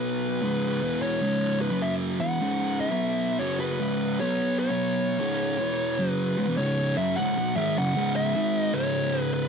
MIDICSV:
0, 0, Header, 1, 3, 480
1, 0, Start_track
1, 0, Key_signature, 4, "minor"
1, 0, Tempo, 594059
1, 31, Time_signature, 4, 2, 24, 8
1, 7661, End_track
2, 0, Start_track
2, 0, Title_t, "Lead electric guitar"
2, 0, Program_c, 0, 29
2, 0, Note_on_c, 0, 71, 85
2, 823, Note_off_c, 0, 71, 0
2, 826, Note_on_c, 0, 73, 95
2, 1300, Note_off_c, 0, 73, 0
2, 1304, Note_on_c, 0, 71, 83
2, 1472, Note_on_c, 0, 76, 99
2, 1478, Note_off_c, 0, 71, 0
2, 1557, Note_off_c, 0, 76, 0
2, 1780, Note_on_c, 0, 78, 104
2, 2234, Note_off_c, 0, 78, 0
2, 2265, Note_on_c, 0, 76, 98
2, 2740, Note_on_c, 0, 73, 94
2, 2764, Note_off_c, 0, 76, 0
2, 2906, Note_off_c, 0, 73, 0
2, 2909, Note_on_c, 0, 71, 74
2, 3392, Note_off_c, 0, 71, 0
2, 3396, Note_on_c, 0, 73, 85
2, 3702, Note_off_c, 0, 73, 0
2, 3712, Note_on_c, 0, 73, 80
2, 4924, Note_off_c, 0, 73, 0
2, 4924, Note_on_c, 0, 71, 80
2, 5304, Note_off_c, 0, 71, 0
2, 5314, Note_on_c, 0, 73, 91
2, 5608, Note_off_c, 0, 73, 0
2, 5630, Note_on_c, 0, 76, 93
2, 5791, Note_off_c, 0, 76, 0
2, 5794, Note_on_c, 0, 78, 93
2, 6108, Note_off_c, 0, 78, 0
2, 6111, Note_on_c, 0, 76, 101
2, 6281, Note_off_c, 0, 76, 0
2, 6288, Note_on_c, 0, 78, 101
2, 6591, Note_off_c, 0, 78, 0
2, 6594, Note_on_c, 0, 76, 103
2, 6950, Note_off_c, 0, 76, 0
2, 6950, Note_on_c, 0, 75, 103
2, 7061, Note_on_c, 0, 73, 96
2, 7084, Note_off_c, 0, 75, 0
2, 7441, Note_off_c, 0, 73, 0
2, 7441, Note_on_c, 0, 71, 96
2, 7544, Note_off_c, 0, 71, 0
2, 7547, Note_on_c, 0, 71, 92
2, 7661, Note_off_c, 0, 71, 0
2, 7661, End_track
3, 0, Start_track
3, 0, Title_t, "Distorted electric guitar"
3, 0, Program_c, 1, 30
3, 0, Note_on_c, 1, 47, 80
3, 0, Note_on_c, 1, 54, 97
3, 0, Note_on_c, 1, 59, 86
3, 331, Note_off_c, 1, 47, 0
3, 333, Note_off_c, 1, 54, 0
3, 336, Note_off_c, 1, 59, 0
3, 338, Note_on_c, 1, 37, 94
3, 346, Note_on_c, 1, 44, 91
3, 350, Note_on_c, 1, 49, 112
3, 656, Note_off_c, 1, 37, 0
3, 661, Note_off_c, 1, 44, 0
3, 661, Note_on_c, 1, 40, 76
3, 663, Note_off_c, 1, 49, 0
3, 667, Note_on_c, 1, 47, 83
3, 673, Note_on_c, 1, 52, 83
3, 984, Note_off_c, 1, 40, 0
3, 987, Note_off_c, 1, 47, 0
3, 987, Note_on_c, 1, 37, 95
3, 990, Note_off_c, 1, 52, 0
3, 991, Note_on_c, 1, 44, 98
3, 994, Note_on_c, 1, 49, 107
3, 1382, Note_off_c, 1, 37, 0
3, 1382, Note_off_c, 1, 49, 0
3, 1385, Note_on_c, 1, 42, 100
3, 1386, Note_off_c, 1, 44, 0
3, 1391, Note_on_c, 1, 49, 90
3, 1395, Note_on_c, 1, 54, 95
3, 1775, Note_off_c, 1, 42, 0
3, 1778, Note_on_c, 1, 40, 93
3, 1781, Note_off_c, 1, 49, 0
3, 1782, Note_off_c, 1, 54, 0
3, 1784, Note_on_c, 1, 47, 81
3, 1788, Note_on_c, 1, 52, 108
3, 1943, Note_off_c, 1, 40, 0
3, 1947, Note_on_c, 1, 37, 105
3, 1948, Note_off_c, 1, 47, 0
3, 1950, Note_off_c, 1, 52, 0
3, 1951, Note_on_c, 1, 44, 116
3, 1956, Note_on_c, 1, 49, 115
3, 2339, Note_off_c, 1, 37, 0
3, 2342, Note_on_c, 1, 47, 100
3, 2347, Note_off_c, 1, 44, 0
3, 2349, Note_off_c, 1, 49, 0
3, 2351, Note_on_c, 1, 54, 102
3, 2354, Note_on_c, 1, 59, 89
3, 2737, Note_off_c, 1, 47, 0
3, 2741, Note_off_c, 1, 54, 0
3, 2743, Note_off_c, 1, 59, 0
3, 2745, Note_on_c, 1, 42, 94
3, 2752, Note_on_c, 1, 49, 97
3, 2756, Note_on_c, 1, 54, 101
3, 3063, Note_off_c, 1, 42, 0
3, 3066, Note_off_c, 1, 49, 0
3, 3068, Note_off_c, 1, 54, 0
3, 3069, Note_on_c, 1, 37, 79
3, 3073, Note_on_c, 1, 44, 87
3, 3080, Note_on_c, 1, 49, 95
3, 3391, Note_off_c, 1, 37, 0
3, 3392, Note_off_c, 1, 44, 0
3, 3395, Note_on_c, 1, 47, 96
3, 3396, Note_off_c, 1, 49, 0
3, 3402, Note_on_c, 1, 54, 102
3, 3406, Note_on_c, 1, 59, 116
3, 3785, Note_off_c, 1, 47, 0
3, 3790, Note_off_c, 1, 54, 0
3, 3795, Note_off_c, 1, 59, 0
3, 3795, Note_on_c, 1, 47, 89
3, 3800, Note_on_c, 1, 54, 95
3, 3804, Note_on_c, 1, 59, 100
3, 4184, Note_off_c, 1, 47, 0
3, 4186, Note_off_c, 1, 54, 0
3, 4188, Note_off_c, 1, 59, 0
3, 4191, Note_on_c, 1, 37, 95
3, 4199, Note_on_c, 1, 44, 87
3, 4201, Note_on_c, 1, 49, 92
3, 4506, Note_off_c, 1, 37, 0
3, 4510, Note_off_c, 1, 44, 0
3, 4510, Note_off_c, 1, 49, 0
3, 4512, Note_on_c, 1, 40, 73
3, 4519, Note_on_c, 1, 47, 71
3, 4524, Note_on_c, 1, 52, 89
3, 4832, Note_off_c, 1, 40, 0
3, 4835, Note_off_c, 1, 47, 0
3, 4838, Note_off_c, 1, 52, 0
3, 4841, Note_on_c, 1, 42, 91
3, 4845, Note_on_c, 1, 49, 90
3, 4853, Note_on_c, 1, 54, 97
3, 5144, Note_off_c, 1, 42, 0
3, 5146, Note_off_c, 1, 49, 0
3, 5150, Note_off_c, 1, 54, 0
3, 5152, Note_on_c, 1, 37, 82
3, 5159, Note_on_c, 1, 44, 89
3, 5230, Note_off_c, 1, 37, 0
3, 5234, Note_off_c, 1, 44, 0
3, 5238, Note_on_c, 1, 40, 101
3, 5244, Note_on_c, 1, 47, 100
3, 5315, Note_off_c, 1, 40, 0
3, 5317, Note_off_c, 1, 47, 0
3, 5319, Note_on_c, 1, 37, 95
3, 5324, Note_on_c, 1, 44, 98
3, 5326, Note_on_c, 1, 49, 117
3, 5623, Note_off_c, 1, 37, 0
3, 5626, Note_off_c, 1, 44, 0
3, 5626, Note_off_c, 1, 49, 0
3, 5635, Note_on_c, 1, 42, 85
3, 5640, Note_on_c, 1, 49, 87
3, 5645, Note_on_c, 1, 54, 94
3, 5794, Note_off_c, 1, 42, 0
3, 5796, Note_off_c, 1, 49, 0
3, 5799, Note_off_c, 1, 54, 0
3, 5800, Note_on_c, 1, 37, 104
3, 5807, Note_on_c, 1, 44, 107
3, 5946, Note_off_c, 1, 37, 0
3, 5950, Note_off_c, 1, 44, 0
3, 5958, Note_on_c, 1, 47, 89
3, 5966, Note_on_c, 1, 54, 99
3, 6104, Note_off_c, 1, 47, 0
3, 6107, Note_off_c, 1, 54, 0
3, 6111, Note_on_c, 1, 44, 104
3, 6119, Note_on_c, 1, 51, 102
3, 6122, Note_on_c, 1, 56, 111
3, 6271, Note_off_c, 1, 44, 0
3, 6275, Note_off_c, 1, 51, 0
3, 6275, Note_on_c, 1, 42, 92
3, 6277, Note_off_c, 1, 56, 0
3, 6286, Note_on_c, 1, 49, 86
3, 6423, Note_off_c, 1, 42, 0
3, 6426, Note_on_c, 1, 37, 79
3, 6428, Note_off_c, 1, 49, 0
3, 6433, Note_on_c, 1, 44, 95
3, 6437, Note_on_c, 1, 49, 88
3, 6739, Note_off_c, 1, 44, 0
3, 6746, Note_off_c, 1, 37, 0
3, 6749, Note_on_c, 1, 44, 99
3, 6752, Note_off_c, 1, 49, 0
3, 6756, Note_on_c, 1, 51, 101
3, 6760, Note_on_c, 1, 56, 114
3, 7055, Note_off_c, 1, 44, 0
3, 7059, Note_off_c, 1, 51, 0
3, 7059, Note_on_c, 1, 37, 85
3, 7061, Note_off_c, 1, 56, 0
3, 7064, Note_on_c, 1, 44, 100
3, 7070, Note_on_c, 1, 49, 91
3, 7661, Note_off_c, 1, 37, 0
3, 7661, Note_off_c, 1, 44, 0
3, 7661, Note_off_c, 1, 49, 0
3, 7661, End_track
0, 0, End_of_file